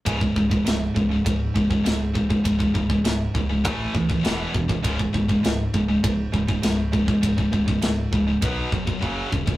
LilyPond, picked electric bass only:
\new Staff \with { instrumentName = "Picked electric bass" } { \clef bass \time 4/4 \key cis \minor \tempo 4 = 100 cis,,8 cis,,8 cis,,8 cis,,8 cis,,8 cis,,8 cis,,4 | cis,,8 cis,,8 cis,,8 cis,,8 a,,8 cis,8 e,,8 e,,8 | cis,,8 cis,,8 cis,,8 cis,,8 cis,,8 cis,,8 cis,,4 | cis,,8 cis,,8 cis,,8 cis,,8 b,,8 eis,,8 fis,,8 dis,,8 | }